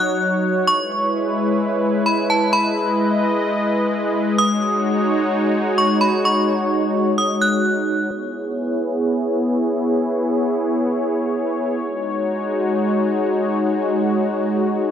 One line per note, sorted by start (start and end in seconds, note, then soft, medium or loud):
0.00 0.63 F#3 medium
0.00 0.63 D#4 medium
0.00 0.65 F#4 medium
0.00 2.49 C#5 medium
0.00 0.63 F#6 medium
0.67 8.07 G#3 medium
0.67 4.35 E4 medium
0.67 4.35 B4 medium
0.67 1.56 C#6 loud
2.06 2.28 B5 medium
2.30 2.52 A5 medium
2.53 4.37 D#5 medium
2.53 3.88 B5 loud
4.38 8.07 D#4 medium
4.38 8.07 F#4 medium
4.38 8.07 C#5 medium
4.38 5.28 D#6 loud
5.78 6.00 C#6 medium
6.01 6.23 B5 medium
6.25 7.14 C#6 medium
7.18 7.40 D#6 medium
7.41 8.07 F#6 medium
8.11 11.79 B3 medium
8.11 11.79 E4 medium
8.11 11.79 G#4 medium
8.11 14.91 C#5 medium
11.83 14.91 G#3 medium
11.83 14.91 D#4 medium
11.83 14.91 F#4 medium